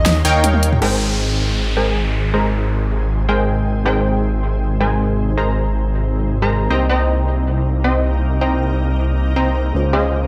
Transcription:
Already playing: D#2 A#3 C#4 D#4 G4 A#4 C#5 D#5 F5 C6
0.06 snare, closed hi-hat
0.25 D#2 D#4 A#4 C#5 F5 G5, closed hi-hat
0.44 closed hi-hat, high tom
0.54 high tom
0.63 closed hi-hat
0.73 mid tom
0.80 G#1 C3 G#3 C4 D#4 G#4 A#4 C5 G5, crash, downlifter
0.84 C5
1.77 G#3 G#4 A#4 C5 G#5
2.34 G#3 G#4 A#4 C5 A#5
3.29 G#3 G#4 A#4 C5 G5
3.84 G#3 C4 D#4 G#4 A#4 C5 G5
3.88 C5
4.81 G#3 G#4 A#4 C5 G#5
5.38 G#3 G#4 A#4 C5 A#5
6.42 G#3 G#4 A#4 C5 A#5
6.68 C2 A#3 C4 D#4 G4 C5 D#5 G5 A#5
6.89 C4 C5 D#5 G5 A#5
7.84 C4 C5 D#5 G5 C6
8.41 C4 C5 D#5 G5 A#5
9.36 C4 C5 D#5 G5 A#5
9.72 C#2 G#3 C#4 F4 C5
9.93 C#4 G#4 C5 D#5 F5

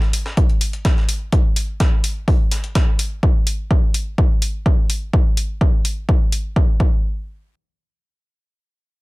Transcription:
0.02 snare
0.13 closed hi-hat, open hi-hat
0.26 snare
0.37 kick, closed hi-hat
0.50 closed hi-hat
0.61 closed hi-hat, open hi-hat
0.73 closed hi-hat
0.85 kick, snare, closed hi-hat
0.97 snare
1.09 closed hi-hat, open hi-hat
1.32 kick, closed hi-hat
1.56 closed hi-hat, open hi-hat
1.80 kick, snare, closed hi-hat
2.04 closed hi-hat, open hi-hat
2.28 kick, open hi-hat
2.51 snare, closed hi-hat, open hi-hat
2.64 closed hi-hat
2.75 kick, snare, closed hi-hat
2.99 closed hi-hat, open hi-hat
3.23 kick
3.47 open hi-hat
3.71 kick
3.94 open hi-hat
4.18 kick
4.42 open hi-hat
4.66 kick
4.90 open hi-hat
5.13 kick
5.37 open hi-hat
5.61 kick
5.85 open hi-hat
6.09 kick
6.32 open hi-hat
6.56 kick
6.80 kick

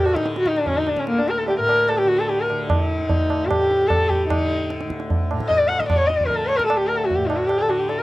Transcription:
Already playing: D2 A2 D3
0.04 F#4, tabla na
0.14 D3 D#4, tabla ke
0.24 D#4, tabla te
0.36 F#4, tabla te
0.46 D#4, tabla ke
0.56 D4, tabla te
0.65 D3 C#4, tabla tin, tabla ge
0.77 D#4
0.87 D4, tabla na
0.96 C#4, tabla ke
1.07 A#3, tabla te
1.13 D2
1.18 D4
1.28 A#4, tabla te
1.38 A4
1.48 G4, tabla tin
1.58 A2 A#4
1.69 tabla na
1.88 A4, tabla na
1.97 G4
2.05 D3 F#4
2.19 A4
2.28 G4, tabla tin
2.41 A#4
2.50 D3, tabla na
2.69 D#4, tabla na, tabla ge
2.98 D2
3.09 tabla tin, tabla ge
3.30 tabla na
3.45 A2 G4
3.51 tabla na, tabla ge
3.71 tabla te
3.88 D3 A4, tabla na, tabla ge
4.08 G4, tabla ge
4.28 D#4, tabla na, tabla ge
4.38 D3
4.70 tabla te
4.81 tabla te
4.85 D2
4.90 tabla ke
5.00 tabla te
5.10 tabla tin, tabla ge
5.31 A2, tabla na
5.40 tabla ke
5.48 D#5, tabla tin, tabla ge
5.58 D5
5.68 F#5, tabla na
5.79 D3 D#5, tabla ke
5.88 D5, tabla na, tabla ge
5.97 C#5
6.07 D#5, tabla te
6.16 D5
6.20 tabla ge
6.25 D3 A#4
6.30 tabla tin, tabla ge
6.36 A4
6.46 C#5, tabla na
6.57 A#4, tabla ke
6.66 A4
6.70 D2, tabla na
6.76 G4
6.87 A#4
6.97 A4
7.04 F#4
7.10 tabla tin, tabla ge
7.15 A2 G4
7.27 D#4, tabla na
7.36 F#4
7.46 G4, tabla na
7.58 A4
7.63 D3
7.69 F#4, tabla na
7.79 G4
7.88 A4, tabla tin
7.99 A#4

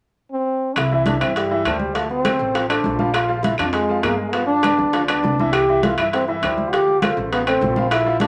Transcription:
0.32 C4
0.76 C2 E4, high bongo, high conga, high timbale, claves
0.91 E3 E4 E5, high bongo, high conga
1.06 D4, high bongo, high conga, high timbale
1.20 G2 E3 C4 E4 E5, high bongo, high conga, high timbale, claves
1.35 G3, high bongo, high conga, high timbale
1.50 E3 E4 E5, high bongo, high conga
1.65 D2 G3 A3 G4 C5, high bongo, low bongo, high conga, high timbale, claves
1.80 G3, high conga
1.95 F3 A3 F4 F5, high bongo, high conga, high timbale
2.10 C4, high bongo, high conga
2.25 A3 A4 C5, high bongo, high conga, high timbale, claves
2.39 A1, high bongo
2.54 F3 F4 F5, high bongo, high conga, high timbale
2.69 A3 D4 A4 C5, high bongo, high conga, high timbale, claves
2.84 A#1, high bongo, low bongo, high conga
2.99 F3 F4 F5, high conga
3.14 F4, high bongo, high conga, high timbale, claves
3.29 F3 F4 F5, high bongo, high conga
3.43 E4, high bongo, high conga, high timbale
3.58 F2 F3 D4 F4 F5, high bongo, high conga, high timbale, claves
3.72 G#3, high bongo, high conga, high timbale
3.89 F3 F4 F5, high bongo, high conga
4.02 G2 G#3 A#3 G#4 A#4, high bongo, low bongo, high conga, high timbale, low timbale, claves
4.18 G#3
4.32 F3 B3 F4 F5, high bongo, high conga, high timbale
4.46 D4, high bongo, high conga
4.63 B3 B4 D5, high bongo, high conga, high timbale, claves
4.78 D2, high bongo, high conga
4.93 F3 F4 F5, high bongo, high conga, high timbale
5.07 B3 D4 B4 D5, high bongo, high conga, high timbale, claves
5.23 C2, high bongo, low bongo, high conga
5.39 E3 E4 E5, high conga
5.52 G4, high bongo, high conga, high timbale, claves
5.69 E3 E4 E5, high bongo, high conga
5.83 F4, high bongo, high conga, high timbale
5.98 G2 E3 E4 E5, high bongo, high conga, high timbale, claves
6.13 C4, high bongo, high conga, high timbale
6.28 E3 E4 E5, high bongo, high conga
6.42 D2 G3 G4 C5, high bongo, low bongo, high conga, high timbale, claves
6.58 high conga
6.72 F3 F4 G4 F5, high bongo, high conga, high timbale
6.88 high bongo, high conga
7.02 A3 F4 A4 C5, high bongo, high conga, high timbale, claves
7.17 A1, high bongo, high conga
7.32 F3 B3 F4 F5, high bongo, high conga, high timbale
7.47 A3 C4 A4 C5, high bongo, high conga, high timbale, claves
7.61 A#1, high bongo, low bongo, high conga
7.76 F3 F4 F5, high conga
7.91 E4, high bongo, high conga, high timbale, claves
8.06 F3 F4 F5, high bongo, high conga
8.20 D4, high bongo, high conga, high timbale

